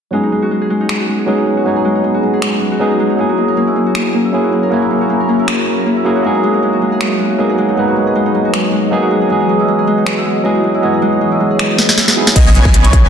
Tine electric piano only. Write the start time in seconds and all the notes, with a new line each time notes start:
0.11 F#3 B3 C#4 D#4 G#4
1.26 F#3 B3 C#4 D#4 G#4
1.64 F#3 B3 C#4 D#4
1.68 C#5
2.79 F#3 B3 C#4 D#4 G#4
3.17 F#3 A#3 C#4 E4
3.21 G#4
4.32 F#3 A#3 C#4 E4 G#4
4.69 F#3 A#3 C#4 E4
4.73 C#5
6.04 F#3 A#3 C#4 E4 G#4
6.22 F#3 A#3 B3 D#4
6.26 G#4
7.38 F#3 A#3 B3 D#4 G#4
7.75 F#3 B3 D#4 A#4
7.79 B4
8.91 F#3 A#3 B3 D#4 G#4
9.28 E3 F#3 B3 D#5
9.32 G#4
10.44 F#3 B3 E4 G#4 D#5
10.81 E3 F#3 B3 C#5 D#5
12.16 F#3 B3 D#4 E4 G#4